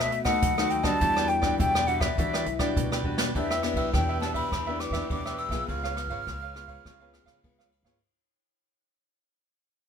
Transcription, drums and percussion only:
0.00 cross-stick medium
0.12 closed hi-hat medium
0.25 kick medium
0.25 cross-stick medium
0.25 closed hi-hat soft
0.42 kick loud
0.42 closed hi-hat medium
0.58 cross-stick medium
0.58 closed hi-hat soft
0.70 closed hi-hat medium
0.84 kick medium
0.84 cross-stick medium
1.01 kick medium
1.01 closed hi-hat medium
1.17 cross-stick medium
1.29 closed hi-hat soft
1.42 kick medium
1.42 cross-stick medium
1.60 kick medium
1.60 closed hi-hat medium
1.75 cross-stick medium
1.75 closed hi-hat soft
1.87 closed hi-hat soft
2.01 kick medium
2.01 cross-stick medium
2.18 kick medium
2.18 closed hi-hat medium
2.34 cross-stick medium
2.46 closed hi-hat soft
2.59 kick medium
2.59 cross-stick medium
2.59 closed hi-hat soft
2.77 kick medium
2.77 closed hi-hat medium
2.92 cross-stick medium
3.05 kick soft
3.18 snare medium
3.35 kick medium
3.35 ride soft
3.50 cross-stick medium
3.63 cross-stick medium
3.63 ride soft
3.76 kick medium
3.76 ride soft
3.94 kick medium
3.94 cross-stick medium
3.94 ride soft
4.22 cross-stick medium
4.22 ride soft
4.35 kick medium
4.35 ride soft
4.52 kick medium
4.52 cross-stick medium
4.52 ride soft
4.80 cross-stick medium
4.80 ride soft
4.93 kick medium
4.93 cross-stick medium
4.93 ride soft
5.10 kick medium
5.10 ride soft
5.26 cross-stick medium
5.38 ride soft
5.51 kick medium
5.51 cross-stick medium
5.51 ride soft
5.69 kick medium
5.69 ride soft
5.84 cross-stick medium
5.97 cross-stick medium
5.97 ride soft
6.10 kick medium
6.10 ride soft
6.27 kick medium
6.27 cross-stick medium
6.27 ride soft
6.56 cross-stick medium
6.56 ride soft
6.68 kick medium
6.68 ride soft
6.86 kick medium
6.86 cross-stick medium
6.86 ride soft
7.13 cross-stick medium
7.13 ride soft
7.27 kick medium
7.27 cross-stick medium
7.27 ride soft
7.44 kick medium
7.44 ride soft
7.60 cross-stick medium
7.72 ride soft
7.85 kick medium
7.85 cross-stick medium
7.85 ride soft

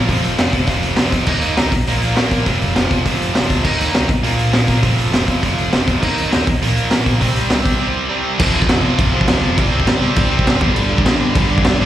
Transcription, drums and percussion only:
0.09 kick medium
0.09 open hi-hat medium
0.24 open hi-hat medium
0.38 snare loud
0.38 open hi-hat medium
0.53 kick medium
0.53 open hi-hat medium
0.67 kick medium
0.67 open hi-hat medium
0.83 open hi-hat medium
0.96 snare loud
0.96 open hi-hat medium
1.12 kick medium
1.12 open hi-hat medium
1.26 kick medium
1.26 crash loud
1.41 open hi-hat medium
1.57 snare loud
1.57 open hi-hat medium
1.72 kick loud
1.72 open hi-hat medium
1.87 open hi-hat medium
2.02 open hi-hat medium
2.16 snare loud
2.16 open hi-hat medium
2.31 kick medium
2.31 open hi-hat medium
2.46 kick loud
2.46 open hi-hat medium
2.61 open hi-hat medium
2.76 snare loud
2.76 open hi-hat medium
2.91 kick medium
2.91 open hi-hat medium
3.06 kick medium
3.06 open hi-hat medium
3.21 open hi-hat medium
3.35 snare loud
3.35 open hi-hat medium
3.50 kick medium
3.50 open hi-hat medium
3.65 kick medium
3.65 crash loud
3.80 open hi-hat medium
3.94 snare loud
3.94 open hi-hat medium
4.09 kick loud
4.09 open hi-hat medium
4.24 open hi-hat medium
4.39 open hi-hat medium
4.53 snare loud
4.53 open hi-hat medium
4.68 kick medium
4.68 open hi-hat medium
4.83 kick loud
4.83 open hi-hat medium
4.98 open hi-hat medium
5.13 snare loud
5.13 open hi-hat medium
5.28 kick medium
5.28 open hi-hat medium
5.43 kick medium
5.43 open hi-hat medium
5.58 open hi-hat soft
5.73 snare loud
5.73 open hi-hat medium
5.88 kick medium
5.88 open hi-hat medium
6.03 kick medium
6.03 crash loud
6.17 open hi-hat medium
6.32 snare loud
6.32 open hi-hat medium
6.47 kick loud
6.47 open hi-hat medium
6.62 open hi-hat medium
6.76 open hi-hat medium
6.91 snare loud
6.91 open hi-hat medium
7.06 kick medium
7.06 open hi-hat medium
7.21 kick medium
7.21 open hi-hat medium
7.36 open hi-hat medium
7.50 snare loud
7.50 open hi-hat medium
7.66 kick medium
7.66 open hi-hat medium
8.40 kick loud
8.40 crash loud
8.40 crash medium
8.62 kick medium
8.69 snare loud
8.69 crash medium
8.99 kick loud
8.99 crash medium
9.21 kick medium
9.28 snare loud
9.28 crash medium
9.58 kick loud
9.58 crash medium
9.80 kick medium
9.87 snare loud
9.87 crash medium
10.16 kick loud
10.16 crash medium
10.39 kick medium
10.47 snare loud
10.47 crash medium
10.61 kick loud
10.76 crash medium
10.98 kick medium
11.06 snare loud
11.06 crash medium
11.35 kick loud
11.35 crash medium
11.58 kick medium
11.65 snare loud
11.65 crash medium

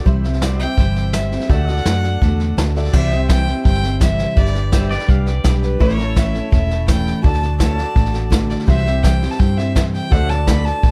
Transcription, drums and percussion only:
0.06 kick medium
0.06 snare soft
0.24 snare soft
0.33 snare soft
0.42 snare loud
0.42 hi-hat pedal medium
0.60 snare soft
0.77 kick loud
0.77 snare soft
0.95 snare soft
1.13 snare loud
1.13 hi-hat pedal medium
1.32 snare soft
1.40 snare soft
1.49 kick loud
1.49 snare soft
1.68 snare soft
1.77 snare soft
1.85 snare loud
1.85 hi-hat pedal medium
2.04 snare soft
2.22 kick loud
2.22 snare soft
2.40 snare soft
2.58 snare loud
2.58 hi-hat pedal medium
2.76 snare soft
2.85 snare soft
2.93 kick loud
2.93 snare soft
2.93 crash loud
3.11 snare soft
3.29 kick loud
3.29 snare loud
3.29 hi-hat pedal medium
3.47 snare soft
3.65 kick loud
3.65 snare soft
3.74 snare soft
3.83 snare soft
4.01 kick loud
4.01 snare loud
4.01 hi-hat pedal medium
4.18 snare soft
4.36 kick loud
4.36 snare soft
4.46 snare soft
4.55 snare soft
4.72 kick medium
4.72 snare loud
4.72 hi-hat pedal loud
4.90 snare soft
4.99 snare soft
5.08 kick loud
5.08 snare soft
5.26 snare soft
5.44 kick medium
5.44 snare loud
5.44 hi-hat pedal medium
5.63 snare soft
5.80 kick loud
5.80 snare soft
5.89 snare soft
5.98 snare soft
6.16 kick loud
6.16 snare loud
6.16 hi-hat pedal medium
6.35 snare soft
6.52 kick loud
6.52 snare soft
6.71 snare soft
6.88 kick loud
6.88 snare loud
6.88 hi-hat pedal medium
7.07 snare soft
7.24 kick loud
7.24 snare soft
7.34 snare soft
7.42 snare soft
7.60 kick medium
7.60 snare loud
7.60 hi-hat pedal medium
7.78 snare soft
7.96 kick loud
7.96 snare soft
8.05 snare soft
8.14 snare soft
8.32 kick medium
8.32 snare loud
8.32 hi-hat pedal medium
8.50 snare soft
8.59 snare soft
8.68 kick loud
8.68 snare soft
8.77 snare soft
8.86 snare soft
9.04 kick loud
9.04 snare loud
9.04 hi-hat pedal medium
9.22 snare soft
9.31 snare soft
9.40 kick loud
9.40 snare soft
9.58 snare soft
9.76 kick medium
9.76 snare loud
9.76 hi-hat pedal medium
9.94 snare soft
10.12 kick loud
10.12 snare soft
10.30 snare soft
10.47 kick medium
10.47 snare loud
10.47 hi-hat pedal medium
10.66 snare soft
10.83 kick loud
10.83 snare soft

